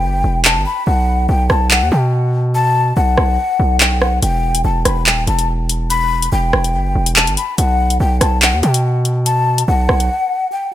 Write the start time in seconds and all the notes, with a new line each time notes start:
Already playing: G5
0.03 F#1
0.24 E1
0.45 A5, clap
0.56 G1
0.66 B5
0.87 B1 F#5
1.29 B1 G5
1.50 B1 A5, cross-stick
1.71 F#5, clap
1.82 D#2
1.92 B2 G5
2.55 A5
2.97 B1 F#5
3.18 B1, cross-stick
3.60 B1
3.80 G5, clap
4.01 F#5, cross-stick
4.22 E1 G5, closed hi-hat
4.55 closed hi-hat
4.64 E1 A5
4.85 E1 B5, cross-stick, closed hi-hat
5.06 D#1 G5, clap
5.27 E1 A5, closed hi-hat
5.39 closed hi-hat
5.69 closed hi-hat
5.90 B5, closed hi-hat
6.22 closed hi-hat
6.32 E1 G5
6.53 E1, cross-stick
6.64 closed hi-hat
6.74 F#1
6.95 E1
7.06 closed hi-hat
7.16 A5, clap
7.27 G1, closed hi-hat
7.37 B5, closed hi-hat
7.58 B1 F#5, closed hi-hat
7.90 closed hi-hat
8.00 B1 G5
8.21 B1 A5, cross-stick, closed hi-hat
8.42 F#5, clap
8.53 D#2
8.63 B2 G5, closed hi-hat
8.74 closed hi-hat
9.05 closed hi-hat
9.26 A5, closed hi-hat
9.58 closed hi-hat
9.68 B1 F#5
9.89 B1, cross-stick
10.00 closed hi-hat
10.52 G5